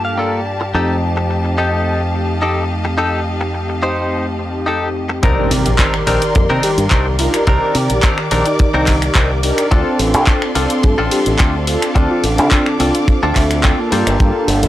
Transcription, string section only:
0.00 0.70 A#3 medium
0.00 5.19 G4 medium
0.00 0.70 F5 medium
0.00 5.19 A5 medium
0.74 5.19 D#5 medium
0.74 5.19 F5 medium
5.23 9.68 A#4 medium
5.23 13.88 D5 medium
5.23 7.45 C6 medium
7.48 9.69 D6 loud
9.72 13.88 A4 medium
9.72 14.68 F5 medium
9.72 11.94 C6 medium
11.96 13.90 D6 medium
13.92 14.68 A#3 medium
13.92 14.68 G4 medium
13.92 14.68 A5 loud

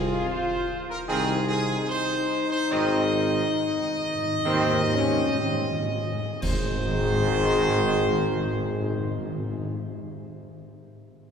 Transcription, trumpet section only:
0.00 0.25 G#4 loud
0.29 0.89 C5 loud
0.89 0.98 A#4 loud
1.09 1.46 G#4 loud
1.49 1.86 G#4 loud
1.89 2.47 C5 loud
2.51 2.70 C5 loud
2.71 6.42 D#5 loud
6.42 9.68 C5 loud

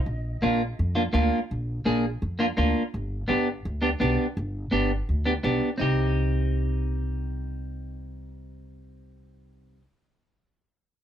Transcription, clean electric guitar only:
0.42 0.61 A#3 medium
0.42 0.61 D4 medium
0.42 0.61 F4 medium
0.95 1.02 A#3 medium
0.95 1.02 D4 medium
0.95 1.02 F4 medium
1.13 1.38 A#3 medium
1.13 1.39 D4 medium
1.13 1.39 F4 medium
1.85 2.04 A#3 medium
1.85 2.04 D4 medium
1.85 2.05 G#4 medium
2.39 2.45 A#3 medium
2.39 2.46 D4 medium
2.39 2.46 F4 medium
2.57 2.82 A#3 medium
2.57 2.82 D4 medium
2.57 2.82 F4 medium
3.28 3.47 B3 medium
3.28 3.47 D4 medium
3.28 3.48 G4 medium
3.82 3.88 B3 medium
3.82 3.89 D4 medium
3.82 3.89 G4 medium
4.00 4.25 B3 medium
4.00 4.26 D4 medium
4.00 4.26 G4 medium
4.71 4.91 B3 medium
4.71 4.91 D4 medium
4.71 4.91 G4 medium
5.25 5.32 B3 medium
5.25 5.32 D4 medium
5.25 5.32 G4 medium
5.43 5.69 B3 medium
5.43 5.69 D4 medium
5.43 5.69 G4 medium
5.78 9.78 C4 medium
5.78 9.80 D#4 medium
5.78 9.82 G4 medium

